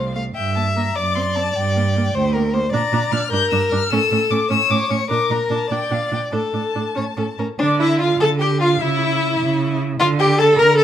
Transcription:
Already playing: cello C2, violin C5 F5
0.15 viola A3, violin F5
0.35 cello G2, violin E5 G5
0.56 viola A#3, violin A5
0.76 viola A#3, violin A#5
0.95 cello F#2, violin D5 D6
1.16 viola C4, violin C6
1.35 viola C4, violin A5
1.55 cello G2, violin G5
1.76 viola A#3
1.97 viola A#3
2.14 cello D2, violin C5
2.34 viola A#3, violin A#4
2.54 viola A#3, violin C5
2.72 cello A#2, viola D4, violin D5 A#5
2.92 cello A#2, viola D4
3.12 cello A#2, viola D4, violin F6
3.31 cello G2, viola D4, violin A#4 G6
3.51 cello G2, viola D4, violin E6
3.72 cello G2, viola D4, violin F6
3.90 cello A2, viola C#4, violin A4 E6
4.11 cello A2, viola C#4
4.30 cello A2, viola C#4, violin D6
4.50 cello A2, viola C#4, violin C#5 E6
4.70 cello A2, viola C#4, violin D6
4.90 cello A2, viola C#4, violin C#6
5.10 cello A#2, viola D4, violin A#4 D6
5.30 cello A#2, viola D4, violin A#5
5.50 cello A#2, viola D4, violin A5
5.70 cello A#2, viola D4, violin D5 G5
5.90 cello A#2, viola D4, violin F5
6.11 cello A#2, viola D4, violin G5
6.32 cello A2, viola D4, violin A4 A5
6.53 cello A2, viola D4
6.75 cello A2, viola D4
6.95 cello A2, viola C#4, violin C#5
7.17 cello A2, viola C#4, violin A4
7.38 cello A2, viola C#4, violin A#4
7.59 cello D3, violin D4 D5, viola D4
7.80 violin E4 E5, viola E4
8.00 violin F4 F5, viola F4
8.20 cello D3, violin A4 A5, viola A4
8.40 violin G4 G5, viola G4
8.60 violin F4 F5, viola F4
8.80 cello C#3, violin E4 E5, viola E4
9.40 cello C#3
10.00 cello D3, viola F4, violin F4 F5
10.19 violin G4 G5, viola G4
10.39 violin A4 A5, viola A4
10.59 cello D3, violin A#4 A#5, viola A#4
10.78 violin A4 A5, viola A4

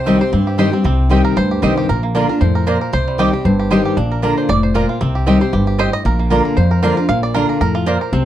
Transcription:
Already playing: upright bass C2, steel-string acoustic guitar C3, five-string banjo G4 C5, fiddle C5
0.06 steel-string acoustic guitar D#3 G3 C4 G4, mandolin C4 G4 D#5 G5, five-string banjo C4
0.21 steel-string acoustic guitar C4 G4, five-string banjo C5
0.33 steel-string acoustic guitar G2, upright bass G2, five-string banjo C4
0.47 five-string banjo G4
0.58 steel-string acoustic guitar D#3 G3 C4 G4, mandolin C4 G4 D#5 G5, five-string banjo C5
0.72 five-string banjo C4, steel-string acoustic guitar C4 G4
0.84 upright bass C2, steel-string acoustic guitar C3, five-string banjo C4
1.09 steel-string acoustic guitar D#3 G3 C4 G4, mandolin C4 G4 D#5 G5, five-string banjo C4
1.25 five-string banjo A#4
1.37 upright bass D2, steel-string acoustic guitar G2, five-string banjo C5
1.51 five-string banjo G4
1.62 upright bass C2, steel-string acoustic guitar D#3 G3 C4 G4, mandolin C4 G4 D#5 G5, five-string banjo C5
1.77 five-string banjo G4
1.89 upright bass A#1, steel-string acoustic guitar A#2, five-string banjo A#4
2.03 five-string banjo A#3
2.15 steel-string acoustic guitar D3 A#3 D4 F4, mandolin A#3 F4 D5 A#5, five-string banjo D4
2.29 steel-string acoustic guitar D4 F4, five-string banjo A#4
2.41 upright bass F2, steel-string acoustic guitar A2, five-string banjo C5
2.55 five-string banjo A#4
2.67 steel-string acoustic guitar A#2, mandolin A#3 F4 D5 A#5, five-string banjo C5
2.81 five-string banjo A#4
2.93 upright bass C2, steel-string acoustic guitar C3, five-string banjo C5
3.08 five-string banjo G3
3.18 steel-string acoustic guitar D#3 G3 C4 G4, mandolin C4 G4 D#5 G5, five-string banjo G4
3.33 steel-string acoustic guitar G4, five-string banjo G4
3.45 upright bass G1, steel-string acoustic guitar G2, five-string banjo C5
3.60 five-string banjo G4
3.71 steel-string acoustic guitar D#3 G3 C4 G4, mandolin C4 G4 D#5 G5, five-string banjo C5
3.85 five-string banjo G4
3.97 upright bass A#1, steel-string acoustic guitar A#2, five-string banjo D4
4.12 five-string banjo A#4
4.22 steel-string acoustic guitar D3 A#3 D4 F4, mandolin A#3 F4 D5 A#5, five-string banjo D4
4.38 five-string banjo C5
4.49 upright bass F1, steel-string acoustic guitar A2, five-string banjo D5
4.63 five-string banjo C5
4.74 steel-string acoustic guitar A#2, mandolin A#3 F4 D5 A#5, five-string banjo A#4
4.89 five-string banjo F4
5.01 upright bass C2, steel-string acoustic guitar C3, five-string banjo C4
5.15 five-string banjo G4
5.26 steel-string acoustic guitar D#3 G3 C4 G4, mandolin C4 G4 D#5 G5, five-string banjo C4
5.40 steel-string acoustic guitar G4, five-string banjo C5
5.53 upright bass G1, steel-string acoustic guitar G2, five-string banjo G4
5.67 five-string banjo G4
5.79 steel-string acoustic guitar A2, mandolin C4 G4 D#5 G5, five-string banjo C5
5.93 five-string banjo D#5
6.05 upright bass A#1, steel-string acoustic guitar A#2, five-string banjo A#4
6.19 five-string banjo A#3
6.30 steel-string acoustic guitar D3 A#3 D4 F4, mandolin A#3 F4 D5 A#5, five-string banjo D4
6.45 five-string banjo A#4
6.57 upright bass F2, steel-string acoustic guitar F2, five-string banjo C5
6.71 five-string banjo A#4
6.82 steel-string acoustic guitar D3 A#3 D4 F4, mandolin A#3 F4 D5 A#5, five-string banjo C5
6.97 steel-string acoustic guitar D4 F4, five-string banjo A#4
7.09 upright bass A#1, steel-string acoustic guitar A#2, five-string banjo F5
7.23 five-string banjo D5
7.34 steel-string acoustic guitar D3 A#3 D4 F4, mandolin A#3 F4 D5 A#5, five-string banjo A#4
7.49 five-string banjo A#4
7.61 upright bass F2, steel-string acoustic guitar A2, five-string banjo A#4
7.75 five-string banjo F4
7.86 steel-string acoustic guitar A#2, mandolin A#3 F4 D5 A#5, five-string banjo C5
8.01 five-string banjo A#4
8.12 upright bass C2, steel-string acoustic guitar C3, five-string banjo C4

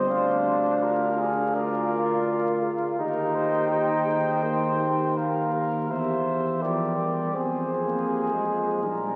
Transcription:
Already playing: trombone C4, french horn G4, flugelhorn C5, cornet D#5
0.10 tuba D2, trombone D4, cornet F5
0.83 french horn F4, flugelhorn A#4, cornet F5
1.18 flugelhorn G#4
1.54 trombone F4, flugelhorn A#4, french horn A#4, cornet D5
2.27 french horn A#4
2.63 french horn G#4
2.98 tuba D#2, trombone D#4, french horn G4, flugelhorn A#4, cornet G5
3.35 flugelhorn C5
3.71 french horn G4, flugelhorn C5
4.07 french horn G#4
4.43 trombone A#3, french horn A#4
4.80 french horn G4
5.17 flugelhorn A#4, cornet F5
5.54 flugelhorn A#4
5.89 tuba E2, french horn G4, flugelhorn C5, cornet E5
6.62 trombone F3, flugelhorn G4, french horn A#4, cornet D5
6.99 trombone G3
7.34 tuba F2, trombone C4, french horn G#4, flugelhorn G#4, cornet C5
7.83 trombone A#3
8.08 french horn G4
8.32 trombone G#3
8.45 french horn F4
8.83 tuba A#1, trombone G3, french horn D#4, flugelhorn A#4, cornet A#4

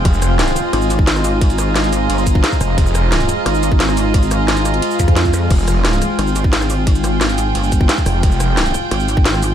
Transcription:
Already playing: ambient pad G#3 F4 C5, string section F4 G#4 G5
0.05 detuned saw bass F1, ambient pad A#5, kick, closed hi-hat, ride bell
0.14 shaker
0.22 cross-stick, closed hi-hat, ride bell, shaker
0.39 snare, closed hi-hat, ride bell
0.48 closed hi-hat, shaker
0.56 cross-stick, closed hi-hat, ride bell, shaker
0.64 string section D#5
0.73 wobble bass G#1, cross-stick, closed hi-hat, ride bell
0.82 shaker
0.90 closed hi-hat, ride bell, shaker
0.99 kick
1.07 snare, closed hi-hat, ride bell
1.16 cross-stick, shaker
1.24 open hi-hat, ride bell, shaker
1.41 kick, closed hi-hat, ride bell
1.50 closed hi-hat, shaker
1.58 cross-stick, closed hi-hat, ride bell, shaker
1.76 snare, closed hi-hat, ride bell
1.84 closed hi-hat, shaker
1.93 closed hi-hat, ride bell, shaker
2.10 wobble bass G1, closed hi-hat, ride bell
2.18 shaker
2.27 kick, closed hi-hat, ride bell, shaker
2.35 kick
2.44 snare, closed hi-hat, ride bell
2.52 kick, shaker
2.61 detuned saw bass F1, cross-stick, open hi-hat, ride bell, shaker
2.78 detuned saw bass F1, kick, closed hi-hat, ride bell
2.86 shaker
2.95 cross-stick, closed hi-hat, ride bell, shaker
3.12 snare, closed hi-hat, ride bell
3.20 closed hi-hat, shaker
3.29 cross-stick, closed hi-hat, ride bell, shaker
3.46 wobble bass G#1, cross-stick, closed hi-hat, ride bell
3.55 shaker
3.63 closed hi-hat, ride bell, shaker
3.72 kick
3.80 snare, closed hi-hat, ride bell
3.89 cross-stick, shaker
3.97 open hi-hat, ride bell, shaker
4.14 kick, closed hi-hat, ride bell
4.23 closed hi-hat, shaker
4.31 cross-stick, closed hi-hat, ride bell, shaker
4.48 snare, closed hi-hat, ride bell
4.57 closed hi-hat, shaker
4.65 cross-stick, closed hi-hat, ride bell, shaker
4.74 closed hi-hat
4.82 closed hi-hat, ride bell, swell
4.91 shaker
4.99 wobble bass F2, kick, closed hi-hat, ride bell, shaker
5.08 kick, closed hi-hat
5.16 snare, closed hi-hat, ride bell
5.25 kick, shaker
5.34 cross-stick, open hi-hat, ride bell, shaker
5.51 detuned saw bass F1, ambient pad G5, kick, closed hi-hat, crash, ride bell
5.59 shaker
5.68 cross-stick, closed hi-hat, ride bell, shaker
5.85 snare, closed hi-hat, ride bell
5.93 closed hi-hat, shaker
6.02 cross-stick, closed hi-hat, ride bell, shaker
6.09 string section G5
6.19 wobble bass G#1, cross-stick, closed hi-hat, ride bell
6.27 shaker
6.36 closed hi-hat, ride bell, shaker
6.44 kick
6.53 snare, closed hi-hat, ride bell
6.61 cross-stick, shaker
6.70 open hi-hat, ride bell, shaker
6.87 kick, closed hi-hat, ride bell
6.95 closed hi-hat, shaker
7.04 cross-stick, closed hi-hat, ride bell, shaker
7.21 snare, closed hi-hat, ride bell
7.29 closed hi-hat, shaker
7.38 closed hi-hat, ride bell, shaker
7.55 wobble bass G1, closed hi-hat, ride bell
7.64 shaker
7.72 kick, closed hi-hat, ride bell, shaker
7.81 kick
7.89 snare, closed hi-hat, ride bell
7.98 kick, shaker
8.06 detuned saw bass F1, cross-stick, open hi-hat, ride bell, shaker
8.23 detuned saw bass F1, kick, closed hi-hat, ride bell
8.32 shaker
8.40 cross-stick, closed hi-hat, ride bell, shaker
8.57 snare, closed hi-hat, ride bell
8.66 closed hi-hat, shaker
8.74 cross-stick, closed hi-hat, ride bell, shaker
8.91 wobble bass G#1, cross-stick, closed hi-hat, ride bell
9.00 shaker
9.09 closed hi-hat, ride bell, shaker
9.17 kick
9.26 snare, closed hi-hat, ride bell
9.34 cross-stick, shaker
9.43 open hi-hat, ride bell, shaker

